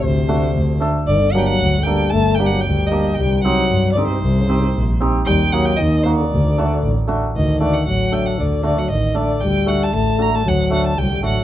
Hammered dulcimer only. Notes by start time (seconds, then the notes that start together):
0.29 A3 D4 F#4
0.80 A3 D4 A4
1.35 A#3 D4 G4
1.86 A#3 D4 A4
2.39 A#3 D4 G4
2.91 A#3 D4 G4
3.45 C4 D#4 G4
3.97 C4 D#4 G4
4.49 C4 D#4 G4
5.00 C4 D#4 G4
5.53 A#3 D#4 G4
6.05 A#3 D#4 F#4
6.58 A3 D4 F#4
7.08 A3 D4 F#4
7.60 A3 D4 F#4
8.12 A3 D4 A4
8.63 A3 D4 F#4
9.15 A3 D4 A4
9.66 A3 D4 F#4
10.19 A3 D4 F#4
10.70 A3 D4 F#4
11.23 A3 D4 F#4